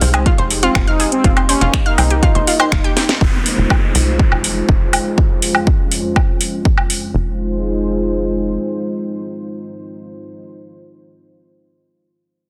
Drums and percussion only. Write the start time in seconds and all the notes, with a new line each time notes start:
0.01 open hi-hat
0.14 closed hi-hat, low woodblock
0.26 kick, closed hi-hat
0.38 closed hi-hat
0.50 open hi-hat
0.63 closed hi-hat
0.75 finger snap, kick, closed hi-hat, low woodblock
0.88 closed hi-hat
1.00 open hi-hat
1.12 closed hi-hat
1.24 kick, closed hi-hat
1.37 closed hi-hat, low woodblock
1.49 open hi-hat
1.61 closed hi-hat
1.74 finger snap, kick, closed hi-hat
1.86 closed hi-hat
1.98 open hi-hat, low woodblock
2.10 closed hi-hat
2.23 kick, closed hi-hat
2.35 closed hi-hat
2.47 open hi-hat
2.60 closed hi-hat, low woodblock
2.72 finger snap, kick, closed hi-hat
2.84 closed hi-hat
2.97 snare, open hi-hat
3.09 snare, closed hi-hat
3.21 kick
3.46 open hi-hat
3.70 kick, low woodblock
3.95 open hi-hat
4.19 kick
4.32 low woodblock
4.44 open hi-hat
4.69 kick
4.93 open hi-hat, low woodblock
5.18 kick
5.42 open hi-hat
5.55 low woodblock
5.67 kick
5.92 open hi-hat
6.16 kick, low woodblock
6.41 open hi-hat
6.65 kick
6.78 low woodblock
6.90 open hi-hat